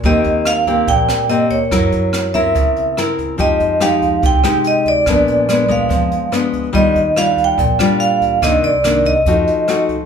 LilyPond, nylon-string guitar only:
\new Staff \with { instrumentName = "Nylon-string guitar" } { \time 4/4 \key ees \major \tempo 4 = 143 << { <bes c' g'>4. <bes c' g'>4. <bes c' g'>8 r8 | <e' ais'>4. <bis e' ais'>4. <bis e' ais'>4 | <aes ees' g'>4 <aes ees' g'>4. <aes ees' g'>4. | <aes ces' d'>4 <aes ces' d'>8 <aes ces' d'>4. <aes ces' d'>4 |
<g d' f'>8 r8 <g d' f'>4 r8 <g d' f'>4. | <ees bes d'>8 r8 <ees bes d'>8 r8 <a ees' ges'>4 <a ees' ges'>8 r8 | } \\ { ees2 bes,2 | fis2 cis2 | f2 c2 | bes,2 f2 |
ees2 bes,2 | c2 f2 | } >> }